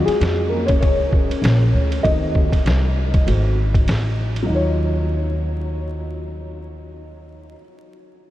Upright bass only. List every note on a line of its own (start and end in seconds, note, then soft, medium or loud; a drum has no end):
0.07 muted upright bass stroke soft
0.20 0.78 F2 medium
0.83 1.28 C#2 medium
1.29 muted upright bass stroke soft
1.42 1.71 A#1 medium
1.73 2.02 D2 medium
2.05 2.50 D#2 medium
2.52 muted upright bass stroke soft
2.66 3.24 C2 medium
3.27 3.85 G#1 medium
3.88 4.46 A1 medium
4.49 7.54 D#2 medium